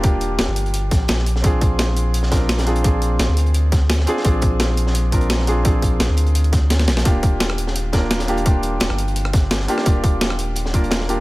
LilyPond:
<<
  \new Staff \with { instrumentName = "Grand piano" } { \time 4/4 \key ees \major \tempo 4 = 171 <bes d' f' g'>2.~ <bes d' f' g'>8 r8 | <c' d' f' aes'>2~ <c' d' f' aes'>8 <c' d' f' bes'>4 <c' d' f' aes'>8 | <c' d' f' aes'>2.~ <c' d' f' aes'>8 <c' d' f' aes'>8 | <c' d' f' aes'>2~ <c' d' f' aes'>8 <c' d' f' bes'>4 <c' d' f' aes'>8 |
<c' d' f' aes'>2.~ <c' d' f' aes'>8 r8 | <bes d' f' g'>2~ <bes d' f' g'>8 <bes d' f' bes'>4 <bes d' f' g'>8 | <bes d' f' g'>2.~ <bes d' f' g'>8 <bes d' f' g'>8 | <bes d' f' g'>2~ <bes d' f' g'>8 <bes d' f' bes'>4 <bes d' f' g'>8 | }
  \new Staff \with { instrumentName = "Sub bass" } { \clef bass \time 4/4 \key ees \major ees,,4 ees,,16 g,,4~ g,,16 bes,,8 bes,,4 | bes,,1~ | bes,,4 bes,,16 d,2~ d,16 r8 | bes,,1~ |
bes,,4 bes,,16 d,2~ d,16 bes,,8 | ees,,1~ | ees,,4 ees,,16 g,,2~ g,,16 r8 | ees,,1 | }
  \new DrumStaff \with { instrumentName = "Drums" } \drummode { \time 4/4 <hh bd>8 hh8 <hh sn>8 hh16 hh16 hh8 <hh bd sn>8 <hh sn>16 sn16 hh16 sn16 | <hh bd>8 <hh bd>8 <hh sn>8 hh8 hh16 sn16 <hh bd sn>8 <hh sn>16 <hh sn>16 hh16 hh16 | <hh bd>8 hh8 <hh sn>8 hh16 hh16 hh8 <hh bd sn>8 <hh sn>16 sn16 hh16 sn16 | <hh bd>8 <hh bd>8 <hh sn>8 hh16 sn16 hh8 <hh bd>16 hh16 <hh sn>16 sn16 hh8 |
<hh bd>8 <hh bd>8 <hh sn>8 hh16 hh16 hh16 hh16 <hh bd sn>8 <hh sn>16 <hh sn>16 <hh sn>16 <hh sn>16 | <hh bd>8 <hh bd>8 <hh sn>16 ss16 hh16 sn16 hh8 <hh bd sn>8 <hh sn>16 <hh sn>16 hh16 hh16 | <hh bd>8 hh8 <hh sn>16 ss16 hh16 hh16 hh16 ss16 <hh bd sn>8 <hh sn>16 sn16 hh16 <ss sn>16 | <hh bd>8 <hh bd>8 <hh sn>16 ss16 hh8 hh16 sn16 <hh bd>16 hh16 <hh sn>16 sn16 hh8 | }
>>